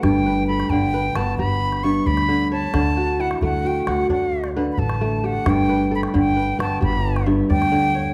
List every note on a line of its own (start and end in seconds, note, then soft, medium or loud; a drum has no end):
0.00 0.62 G1 medium
0.00 1.83 G2 medium
0.00 1.57 A3 medium
0.00 1.03 D4 medium
0.00 0.26 B4 medium
0.00 0.47 G5 medium
0.00 calabash thump medium
0.00 calabash click medium
0.26 0.93 B4 medium
0.47 1.81 A4 medium
0.47 0.71 B5 medium
0.60 calabash click soft
0.70 1.10 G1 medium
0.70 2.27 D3 medium
0.70 1.18 G5 medium
0.70 calabash thump medium
0.70 calabash click soft
0.94 2.17 B4 medium
1.16 1.36 G1 medium
1.16 3.02 B3 medium
1.16 1.38 A5 medium
1.16 calabash click medium
1.38 1.98 G1 medium
1.38 2.80 G4 medium
1.38 1.85 B5 loud
1.38 calabash thump medium
1.72 calabash click soft
1.83 2.80 G2 medium
1.83 2.87 E5 medium
1.83 2.08 C#6 medium
2.06 2.65 D2 medium
2.06 3.17 D5 medium
2.06 2.51 B5 medium
2.06 calabash thump medium
2.17 calabash click soft
2.28 2.73 D3 medium
2.52 3.66 C#5 medium
2.52 3.22 A5 medium
2.74 3.33 D2 medium
2.74 4.55 D3 medium
2.74 calabash thump medium
2.74 calabash click medium
2.97 3.64 F#4 medium
3.19 4.76 E4 medium
3.19 3.42 F#5 medium
3.31 calabash click soft
3.41 3.81 D2 medium
3.41 5.01 A3 medium
3.41 3.68 F#5 medium
3.41 calabash thump medium
3.41 calabash click soft
3.65 3.88 F#4 medium
3.65 3.90 G5 medium
3.87 4.07 D2 medium
3.87 5.30 F#4 medium
3.87 4.11 F#5 medium
3.87 calabash click medium
4.10 4.69 D2 medium
4.10 5.78 D4 medium
4.10 4.49 F#5 medium
4.10 calabash thump medium
4.44 calabash click soft
4.56 5.51 D3 medium
4.56 5.69 B4 medium
4.72 4.80 B5 medium
4.78 5.37 A1 medium
4.78 5.91 A4 medium
4.78 5.27 A5 medium
4.78 calabash thump medium
4.90 calabash click soft
5.01 7.01 A3 medium
5.24 6.65 G4 medium
5.24 5.51 F#5 medium
5.46 6.05 G1 medium
5.46 7.25 G2 medium
5.46 5.93 G5 medium
5.46 calabash thump medium
5.46 calabash click medium
5.69 6.36 B4 medium
5.91 7.23 A4 medium
5.91 6.01 B5 medium
6.03 calabash click medium
6.14 6.53 G1 medium
6.14 7.71 D3 medium
6.14 6.58 G5 medium
6.14 calabash thump medium
6.14 calabash click soft
6.36 7.59 B4 medium
6.59 6.79 G1 medium
6.59 8.14 B3 medium
6.59 6.81 A5 medium
6.59 calabash click medium
6.81 7.41 G1 medium
6.81 8.14 G4 medium
6.81 7.25 B5 medium
6.81 calabash thump medium
7.16 calabash click medium
7.26 8.14 G2 medium
7.26 8.14 E5 medium
7.50 8.08 D2 medium
7.50 8.14 D5 medium
7.50 8.14 G5 loud
7.50 calabash thump medium
7.62 calabash click medium
7.72 8.14 D3 medium
7.95 8.14 C#5 medium